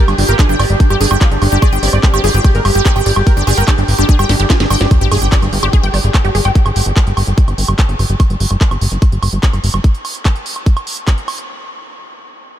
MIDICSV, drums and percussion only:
0, 0, Header, 1, 2, 480
1, 0, Start_track
1, 0, Tempo, 410959
1, 1896, Time_signature, 4, 2, 24, 8
1, 14707, End_track
2, 0, Start_track
2, 0, Title_t, "Drums"
2, 95, Note_on_c, 9, 42, 41
2, 95, Note_on_c, 9, 76, 82
2, 212, Note_off_c, 9, 42, 0
2, 212, Note_off_c, 9, 76, 0
2, 215, Note_on_c, 9, 46, 109
2, 332, Note_off_c, 9, 46, 0
2, 335, Note_on_c, 9, 42, 41
2, 452, Note_off_c, 9, 42, 0
2, 455, Note_on_c, 9, 36, 119
2, 455, Note_on_c, 9, 39, 120
2, 455, Note_on_c, 9, 42, 72
2, 455, Note_on_c, 9, 76, 43
2, 572, Note_off_c, 9, 36, 0
2, 572, Note_off_c, 9, 39, 0
2, 572, Note_off_c, 9, 42, 0
2, 572, Note_off_c, 9, 76, 0
2, 575, Note_on_c, 9, 42, 41
2, 692, Note_off_c, 9, 42, 0
2, 695, Note_on_c, 9, 46, 90
2, 695, Note_on_c, 9, 76, 87
2, 812, Note_off_c, 9, 46, 0
2, 812, Note_off_c, 9, 76, 0
2, 815, Note_on_c, 9, 42, 40
2, 932, Note_off_c, 9, 42, 0
2, 935, Note_on_c, 9, 36, 117
2, 935, Note_on_c, 9, 42, 66
2, 1052, Note_off_c, 9, 36, 0
2, 1052, Note_off_c, 9, 42, 0
2, 1056, Note_on_c, 9, 42, 40
2, 1056, Note_on_c, 9, 76, 42
2, 1172, Note_off_c, 9, 42, 0
2, 1172, Note_off_c, 9, 76, 0
2, 1175, Note_on_c, 9, 46, 104
2, 1292, Note_off_c, 9, 46, 0
2, 1296, Note_on_c, 9, 42, 41
2, 1296, Note_on_c, 9, 76, 88
2, 1412, Note_off_c, 9, 42, 0
2, 1412, Note_off_c, 9, 76, 0
2, 1415, Note_on_c, 9, 36, 120
2, 1416, Note_on_c, 9, 39, 116
2, 1416, Note_on_c, 9, 42, 69
2, 1532, Note_off_c, 9, 36, 0
2, 1533, Note_off_c, 9, 39, 0
2, 1533, Note_off_c, 9, 42, 0
2, 1535, Note_on_c, 9, 42, 41
2, 1652, Note_off_c, 9, 42, 0
2, 1655, Note_on_c, 9, 46, 94
2, 1655, Note_on_c, 9, 76, 43
2, 1772, Note_off_c, 9, 46, 0
2, 1772, Note_off_c, 9, 76, 0
2, 1776, Note_on_c, 9, 42, 41
2, 1892, Note_off_c, 9, 42, 0
2, 1895, Note_on_c, 9, 36, 116
2, 1895, Note_on_c, 9, 42, 68
2, 1895, Note_on_c, 9, 76, 85
2, 2012, Note_off_c, 9, 36, 0
2, 2012, Note_off_c, 9, 42, 0
2, 2012, Note_off_c, 9, 76, 0
2, 2015, Note_on_c, 9, 42, 42
2, 2132, Note_off_c, 9, 42, 0
2, 2135, Note_on_c, 9, 46, 108
2, 2252, Note_off_c, 9, 46, 0
2, 2255, Note_on_c, 9, 76, 45
2, 2372, Note_off_c, 9, 76, 0
2, 2375, Note_on_c, 9, 36, 114
2, 2375, Note_on_c, 9, 39, 121
2, 2375, Note_on_c, 9, 42, 72
2, 2492, Note_off_c, 9, 36, 0
2, 2492, Note_off_c, 9, 39, 0
2, 2492, Note_off_c, 9, 42, 0
2, 2495, Note_on_c, 9, 42, 42
2, 2495, Note_on_c, 9, 76, 85
2, 2612, Note_off_c, 9, 42, 0
2, 2612, Note_off_c, 9, 76, 0
2, 2615, Note_on_c, 9, 46, 92
2, 2732, Note_off_c, 9, 46, 0
2, 2736, Note_on_c, 9, 42, 42
2, 2852, Note_off_c, 9, 42, 0
2, 2855, Note_on_c, 9, 36, 115
2, 2856, Note_on_c, 9, 42, 71
2, 2856, Note_on_c, 9, 76, 43
2, 2972, Note_off_c, 9, 36, 0
2, 2972, Note_off_c, 9, 42, 0
2, 2972, Note_off_c, 9, 76, 0
2, 2976, Note_on_c, 9, 42, 43
2, 3093, Note_off_c, 9, 42, 0
2, 3095, Note_on_c, 9, 46, 101
2, 3095, Note_on_c, 9, 76, 85
2, 3212, Note_off_c, 9, 46, 0
2, 3212, Note_off_c, 9, 76, 0
2, 3216, Note_on_c, 9, 42, 42
2, 3332, Note_off_c, 9, 42, 0
2, 3335, Note_on_c, 9, 36, 112
2, 3336, Note_on_c, 9, 39, 119
2, 3336, Note_on_c, 9, 42, 72
2, 3452, Note_off_c, 9, 36, 0
2, 3452, Note_off_c, 9, 39, 0
2, 3452, Note_off_c, 9, 42, 0
2, 3456, Note_on_c, 9, 42, 42
2, 3456, Note_on_c, 9, 76, 43
2, 3572, Note_off_c, 9, 42, 0
2, 3572, Note_off_c, 9, 76, 0
2, 3576, Note_on_c, 9, 46, 93
2, 3692, Note_off_c, 9, 46, 0
2, 3696, Note_on_c, 9, 76, 84
2, 3812, Note_off_c, 9, 76, 0
2, 3815, Note_on_c, 9, 36, 114
2, 3816, Note_on_c, 9, 42, 69
2, 3932, Note_off_c, 9, 36, 0
2, 3933, Note_off_c, 9, 42, 0
2, 3936, Note_on_c, 9, 42, 42
2, 4052, Note_off_c, 9, 42, 0
2, 4056, Note_on_c, 9, 46, 104
2, 4056, Note_on_c, 9, 76, 43
2, 4172, Note_off_c, 9, 46, 0
2, 4172, Note_off_c, 9, 76, 0
2, 4175, Note_on_c, 9, 42, 44
2, 4292, Note_off_c, 9, 42, 0
2, 4295, Note_on_c, 9, 36, 121
2, 4295, Note_on_c, 9, 39, 127
2, 4295, Note_on_c, 9, 42, 72
2, 4295, Note_on_c, 9, 76, 86
2, 4412, Note_off_c, 9, 36, 0
2, 4412, Note_off_c, 9, 39, 0
2, 4412, Note_off_c, 9, 42, 0
2, 4412, Note_off_c, 9, 76, 0
2, 4416, Note_on_c, 9, 42, 44
2, 4532, Note_off_c, 9, 42, 0
2, 4535, Note_on_c, 9, 46, 93
2, 4652, Note_off_c, 9, 46, 0
2, 4656, Note_on_c, 9, 42, 43
2, 4656, Note_on_c, 9, 76, 43
2, 4772, Note_off_c, 9, 42, 0
2, 4772, Note_off_c, 9, 76, 0
2, 4775, Note_on_c, 9, 36, 120
2, 4776, Note_on_c, 9, 42, 71
2, 4892, Note_off_c, 9, 36, 0
2, 4892, Note_off_c, 9, 42, 0
2, 4896, Note_on_c, 9, 42, 43
2, 4896, Note_on_c, 9, 76, 86
2, 5012, Note_off_c, 9, 42, 0
2, 5012, Note_off_c, 9, 76, 0
2, 5016, Note_on_c, 9, 38, 62
2, 5016, Note_on_c, 9, 46, 107
2, 5133, Note_off_c, 9, 38, 0
2, 5133, Note_off_c, 9, 46, 0
2, 5136, Note_on_c, 9, 42, 43
2, 5252, Note_off_c, 9, 42, 0
2, 5256, Note_on_c, 9, 36, 114
2, 5256, Note_on_c, 9, 38, 81
2, 5256, Note_on_c, 9, 39, 123
2, 5256, Note_on_c, 9, 42, 73
2, 5256, Note_on_c, 9, 76, 43
2, 5372, Note_off_c, 9, 36, 0
2, 5372, Note_off_c, 9, 38, 0
2, 5372, Note_off_c, 9, 39, 0
2, 5372, Note_off_c, 9, 42, 0
2, 5372, Note_off_c, 9, 76, 0
2, 5376, Note_on_c, 9, 38, 75
2, 5376, Note_on_c, 9, 42, 43
2, 5492, Note_off_c, 9, 38, 0
2, 5492, Note_off_c, 9, 42, 0
2, 5495, Note_on_c, 9, 46, 90
2, 5495, Note_on_c, 9, 76, 84
2, 5612, Note_off_c, 9, 46, 0
2, 5612, Note_off_c, 9, 76, 0
2, 5616, Note_on_c, 9, 38, 90
2, 5616, Note_on_c, 9, 42, 41
2, 5732, Note_off_c, 9, 38, 0
2, 5732, Note_off_c, 9, 42, 0
2, 5735, Note_on_c, 9, 42, 69
2, 5735, Note_on_c, 9, 76, 40
2, 5736, Note_on_c, 9, 36, 116
2, 5852, Note_off_c, 9, 36, 0
2, 5852, Note_off_c, 9, 42, 0
2, 5852, Note_off_c, 9, 76, 0
2, 5856, Note_on_c, 9, 42, 40
2, 5972, Note_off_c, 9, 42, 0
2, 5975, Note_on_c, 9, 46, 109
2, 5975, Note_on_c, 9, 76, 81
2, 6092, Note_off_c, 9, 46, 0
2, 6092, Note_off_c, 9, 76, 0
2, 6095, Note_on_c, 9, 42, 42
2, 6212, Note_off_c, 9, 42, 0
2, 6216, Note_on_c, 9, 36, 120
2, 6216, Note_on_c, 9, 39, 127
2, 6216, Note_on_c, 9, 42, 72
2, 6332, Note_off_c, 9, 36, 0
2, 6332, Note_off_c, 9, 39, 0
2, 6332, Note_off_c, 9, 42, 0
2, 6336, Note_on_c, 9, 42, 42
2, 6336, Note_on_c, 9, 76, 40
2, 6452, Note_off_c, 9, 42, 0
2, 6452, Note_off_c, 9, 76, 0
2, 6456, Note_on_c, 9, 46, 90
2, 6572, Note_off_c, 9, 46, 0
2, 6575, Note_on_c, 9, 42, 41
2, 6575, Note_on_c, 9, 76, 76
2, 6692, Note_off_c, 9, 42, 0
2, 6692, Note_off_c, 9, 76, 0
2, 6696, Note_on_c, 9, 36, 116
2, 6696, Note_on_c, 9, 42, 72
2, 6812, Note_off_c, 9, 36, 0
2, 6812, Note_off_c, 9, 42, 0
2, 6816, Note_on_c, 9, 42, 40
2, 6932, Note_off_c, 9, 42, 0
2, 6935, Note_on_c, 9, 46, 105
2, 6935, Note_on_c, 9, 76, 38
2, 7052, Note_off_c, 9, 46, 0
2, 7052, Note_off_c, 9, 76, 0
2, 7056, Note_on_c, 9, 42, 42
2, 7172, Note_off_c, 9, 42, 0
2, 7175, Note_on_c, 9, 36, 118
2, 7175, Note_on_c, 9, 39, 126
2, 7175, Note_on_c, 9, 42, 70
2, 7175, Note_on_c, 9, 76, 78
2, 7292, Note_off_c, 9, 36, 0
2, 7292, Note_off_c, 9, 39, 0
2, 7292, Note_off_c, 9, 42, 0
2, 7292, Note_off_c, 9, 76, 0
2, 7295, Note_on_c, 9, 42, 41
2, 7412, Note_off_c, 9, 42, 0
2, 7415, Note_on_c, 9, 46, 95
2, 7532, Note_off_c, 9, 46, 0
2, 7535, Note_on_c, 9, 42, 40
2, 7535, Note_on_c, 9, 76, 40
2, 7652, Note_off_c, 9, 42, 0
2, 7652, Note_off_c, 9, 76, 0
2, 7655, Note_on_c, 9, 42, 65
2, 7656, Note_on_c, 9, 36, 126
2, 7772, Note_off_c, 9, 36, 0
2, 7772, Note_off_c, 9, 42, 0
2, 7775, Note_on_c, 9, 42, 40
2, 7775, Note_on_c, 9, 76, 77
2, 7892, Note_off_c, 9, 42, 0
2, 7892, Note_off_c, 9, 76, 0
2, 7895, Note_on_c, 9, 46, 112
2, 8012, Note_off_c, 9, 46, 0
2, 8016, Note_on_c, 9, 42, 41
2, 8132, Note_off_c, 9, 42, 0
2, 8135, Note_on_c, 9, 39, 127
2, 8135, Note_on_c, 9, 42, 70
2, 8135, Note_on_c, 9, 76, 40
2, 8136, Note_on_c, 9, 36, 125
2, 8252, Note_off_c, 9, 36, 0
2, 8252, Note_off_c, 9, 39, 0
2, 8252, Note_off_c, 9, 42, 0
2, 8252, Note_off_c, 9, 76, 0
2, 8255, Note_on_c, 9, 42, 41
2, 8372, Note_off_c, 9, 42, 0
2, 8375, Note_on_c, 9, 46, 97
2, 8375, Note_on_c, 9, 76, 74
2, 8492, Note_off_c, 9, 46, 0
2, 8492, Note_off_c, 9, 76, 0
2, 8496, Note_on_c, 9, 42, 38
2, 8612, Note_off_c, 9, 42, 0
2, 8616, Note_on_c, 9, 36, 123
2, 8616, Note_on_c, 9, 42, 68
2, 8732, Note_off_c, 9, 42, 0
2, 8733, Note_off_c, 9, 36, 0
2, 8736, Note_on_c, 9, 42, 40
2, 8736, Note_on_c, 9, 76, 38
2, 8853, Note_off_c, 9, 42, 0
2, 8853, Note_off_c, 9, 76, 0
2, 8856, Note_on_c, 9, 46, 106
2, 8972, Note_off_c, 9, 46, 0
2, 8976, Note_on_c, 9, 42, 39
2, 8976, Note_on_c, 9, 76, 76
2, 9093, Note_off_c, 9, 42, 0
2, 9093, Note_off_c, 9, 76, 0
2, 9096, Note_on_c, 9, 36, 123
2, 9096, Note_on_c, 9, 39, 125
2, 9096, Note_on_c, 9, 42, 69
2, 9212, Note_off_c, 9, 36, 0
2, 9212, Note_off_c, 9, 39, 0
2, 9212, Note_off_c, 9, 42, 0
2, 9216, Note_on_c, 9, 42, 40
2, 9333, Note_off_c, 9, 42, 0
2, 9336, Note_on_c, 9, 46, 96
2, 9336, Note_on_c, 9, 76, 37
2, 9452, Note_off_c, 9, 46, 0
2, 9452, Note_off_c, 9, 76, 0
2, 9456, Note_on_c, 9, 42, 40
2, 9573, Note_off_c, 9, 42, 0
2, 9576, Note_on_c, 9, 36, 125
2, 9576, Note_on_c, 9, 42, 65
2, 9576, Note_on_c, 9, 76, 75
2, 9693, Note_off_c, 9, 36, 0
2, 9693, Note_off_c, 9, 42, 0
2, 9693, Note_off_c, 9, 76, 0
2, 9696, Note_on_c, 9, 42, 39
2, 9812, Note_off_c, 9, 42, 0
2, 9816, Note_on_c, 9, 46, 110
2, 9933, Note_off_c, 9, 46, 0
2, 9936, Note_on_c, 9, 42, 39
2, 9936, Note_on_c, 9, 76, 38
2, 10053, Note_off_c, 9, 42, 0
2, 10053, Note_off_c, 9, 76, 0
2, 10056, Note_on_c, 9, 36, 125
2, 10056, Note_on_c, 9, 39, 121
2, 10056, Note_on_c, 9, 42, 65
2, 10172, Note_off_c, 9, 36, 0
2, 10173, Note_off_c, 9, 39, 0
2, 10173, Note_off_c, 9, 42, 0
2, 10176, Note_on_c, 9, 42, 39
2, 10176, Note_on_c, 9, 76, 73
2, 10293, Note_off_c, 9, 42, 0
2, 10293, Note_off_c, 9, 76, 0
2, 10296, Note_on_c, 9, 46, 100
2, 10412, Note_off_c, 9, 46, 0
2, 10416, Note_on_c, 9, 42, 39
2, 10533, Note_off_c, 9, 42, 0
2, 10536, Note_on_c, 9, 36, 124
2, 10536, Note_on_c, 9, 42, 63
2, 10536, Note_on_c, 9, 76, 38
2, 10653, Note_off_c, 9, 36, 0
2, 10653, Note_off_c, 9, 42, 0
2, 10653, Note_off_c, 9, 76, 0
2, 10656, Note_on_c, 9, 42, 38
2, 10772, Note_off_c, 9, 42, 0
2, 10776, Note_on_c, 9, 46, 110
2, 10776, Note_on_c, 9, 76, 73
2, 10892, Note_off_c, 9, 46, 0
2, 10892, Note_off_c, 9, 76, 0
2, 10896, Note_on_c, 9, 42, 38
2, 11013, Note_off_c, 9, 42, 0
2, 11016, Note_on_c, 9, 36, 126
2, 11016, Note_on_c, 9, 39, 123
2, 11016, Note_on_c, 9, 42, 65
2, 11132, Note_off_c, 9, 36, 0
2, 11133, Note_off_c, 9, 39, 0
2, 11133, Note_off_c, 9, 42, 0
2, 11136, Note_on_c, 9, 42, 39
2, 11136, Note_on_c, 9, 76, 38
2, 11253, Note_off_c, 9, 42, 0
2, 11253, Note_off_c, 9, 76, 0
2, 11256, Note_on_c, 9, 46, 98
2, 11373, Note_off_c, 9, 46, 0
2, 11376, Note_on_c, 9, 76, 74
2, 11493, Note_off_c, 9, 76, 0
2, 11496, Note_on_c, 9, 36, 125
2, 11496, Note_on_c, 9, 42, 63
2, 11612, Note_off_c, 9, 36, 0
2, 11612, Note_off_c, 9, 42, 0
2, 11616, Note_on_c, 9, 42, 36
2, 11733, Note_off_c, 9, 42, 0
2, 11736, Note_on_c, 9, 46, 109
2, 11736, Note_on_c, 9, 76, 39
2, 11853, Note_off_c, 9, 46, 0
2, 11853, Note_off_c, 9, 76, 0
2, 11856, Note_on_c, 9, 42, 38
2, 11973, Note_off_c, 9, 42, 0
2, 11976, Note_on_c, 9, 36, 124
2, 11976, Note_on_c, 9, 39, 120
2, 11976, Note_on_c, 9, 42, 63
2, 11976, Note_on_c, 9, 76, 76
2, 12092, Note_off_c, 9, 36, 0
2, 12093, Note_off_c, 9, 39, 0
2, 12093, Note_off_c, 9, 42, 0
2, 12093, Note_off_c, 9, 76, 0
2, 12096, Note_on_c, 9, 42, 37
2, 12212, Note_off_c, 9, 42, 0
2, 12216, Note_on_c, 9, 46, 95
2, 12332, Note_off_c, 9, 46, 0
2, 12336, Note_on_c, 9, 42, 36
2, 12336, Note_on_c, 9, 76, 37
2, 12453, Note_off_c, 9, 42, 0
2, 12453, Note_off_c, 9, 76, 0
2, 12455, Note_on_c, 9, 36, 121
2, 12456, Note_on_c, 9, 42, 62
2, 12572, Note_off_c, 9, 36, 0
2, 12572, Note_off_c, 9, 42, 0
2, 12576, Note_on_c, 9, 42, 37
2, 12576, Note_on_c, 9, 76, 76
2, 12692, Note_off_c, 9, 42, 0
2, 12692, Note_off_c, 9, 76, 0
2, 12695, Note_on_c, 9, 46, 105
2, 12812, Note_off_c, 9, 46, 0
2, 12816, Note_on_c, 9, 42, 36
2, 12933, Note_off_c, 9, 42, 0
2, 12935, Note_on_c, 9, 36, 119
2, 12936, Note_on_c, 9, 39, 114
2, 12936, Note_on_c, 9, 42, 62
2, 12936, Note_on_c, 9, 76, 38
2, 13052, Note_off_c, 9, 36, 0
2, 13052, Note_off_c, 9, 39, 0
2, 13052, Note_off_c, 9, 42, 0
2, 13052, Note_off_c, 9, 76, 0
2, 13056, Note_on_c, 9, 42, 37
2, 13172, Note_off_c, 9, 42, 0
2, 13176, Note_on_c, 9, 46, 93
2, 13176, Note_on_c, 9, 76, 77
2, 13292, Note_off_c, 9, 46, 0
2, 13292, Note_off_c, 9, 76, 0
2, 13296, Note_on_c, 9, 42, 36
2, 13413, Note_off_c, 9, 42, 0
2, 14707, End_track
0, 0, End_of_file